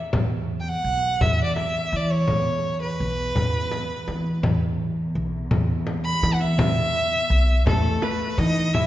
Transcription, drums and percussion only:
0.13 frame drum
1.21 frame drum
1.56 frame drum
2.28 frame drum
3.36 frame drum
3.71 frame drum
4.08 frame drum
4.43 frame drum
5.51 frame drum
5.87 frame drum
6.23 frame drum
6.59 frame drum
7.67 frame drum
8.02 frame drum
8.39 frame drum
8.74 frame drum

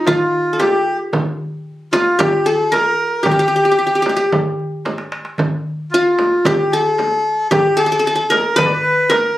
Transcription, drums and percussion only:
0.07 frame drum, darbuka dum
0.60 darbuka tek, frame drum
0.87 darbuka ka
1.13 darbuka dum, frame drum
1.93 darbuka tek, frame drum
2.20 darbuka dum, frame drum
2.73 darbuka tek, frame drum
3.00 darbuka ka
3.25 frame drum, darbuka dum
3.93 darbuka ka
4.06 darbuka tek, frame drum
4.19 darbuka ka
4.32 darbuka dum, frame drum
4.59 darbuka ka
4.85 darbuka tek, frame drum
4.98 darbuka ka
5.12 darbuka tek
5.25 darbuka ka
5.38 darbuka dum, frame drum
6.18 darbuka tek, frame drum
6.45 darbuka dum, frame drum
6.98 darbuka tek, frame drum
7.25 darbuka ka
7.51 darbuka dum, frame drum
8.32 frame drum
8.58 darbuka dum, frame drum
9.11 darbuka tek, frame drum

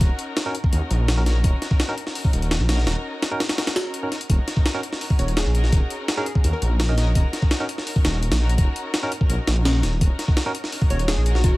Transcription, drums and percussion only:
0.01 kick, closed hi-hat
0.19 closed hi-hat
0.37 snare, closed hi-hat
0.55 closed hi-hat
0.64 kick
0.73 closed hi-hat
0.91 closed hi-hat
1.08 snare, closed hi-hat
1.26 snare, closed hi-hat
1.44 kick, closed hi-hat
1.62 snare, closed hi-hat
1.71 kick
1.80 snare, closed hi-hat
1.98 closed hi-hat
2.07 snare
2.15 open hi-hat
2.25 kick
2.33 closed hi-hat
2.42 closed hi-hat
2.51 snare, closed hi-hat
2.69 snare, closed hi-hat
2.78 snare
2.87 snare, closed hi-hat
3.22 snare, closed hi-hat
3.40 snare, closed hi-hat
3.49 snare, closed hi-hat
3.58 snare, closed hi-hat
3.67 snare, closed hi-hat
3.76 snare, closed hi-hat
3.94 closed hi-hat
4.12 snare, closed hi-hat
4.21 closed hi-hat
4.30 kick, closed hi-hat
4.48 snare, closed hi-hat
4.57 kick
4.66 snare, closed hi-hat
4.83 closed hi-hat
4.93 snare
5.01 open hi-hat
5.10 kick
5.19 closed hi-hat
5.28 closed hi-hat
5.37 snare, closed hi-hat
5.55 closed hi-hat
5.64 snare
5.73 kick, closed hi-hat
5.90 closed hi-hat
6.08 snare, closed hi-hat
6.26 closed hi-hat
6.35 kick
6.44 closed hi-hat
6.62 closed hi-hat
6.80 snare, closed hi-hat
6.98 snare, closed hi-hat
7.15 kick, closed hi-hat
7.33 snare, closed hi-hat
7.42 kick
7.51 snare, closed hi-hat
7.69 closed hi-hat
7.78 snare
7.87 open hi-hat
7.96 kick
8.05 snare, closed hi-hat
8.23 closed hi-hat
8.32 snare, closed hi-hat
8.49 closed hi-hat
8.58 kick, closed hi-hat
8.76 closed hi-hat
8.94 snare, closed hi-hat
9.12 closed hi-hat
9.21 kick
9.30 closed hi-hat
9.47 snare, closed hi-hat
9.65 snare, closed hi-hat
9.83 snare, closed hi-hat
10.01 kick, closed hi-hat
10.19 snare, closed hi-hat
10.28 kick
10.37 snare, closed hi-hat
10.55 closed hi-hat
10.64 snare
10.72 open hi-hat
10.82 kick
10.90 closed hi-hat
10.99 closed hi-hat
11.08 snare, closed hi-hat
11.26 closed hi-hat
11.35 snare
11.44 kick, closed hi-hat

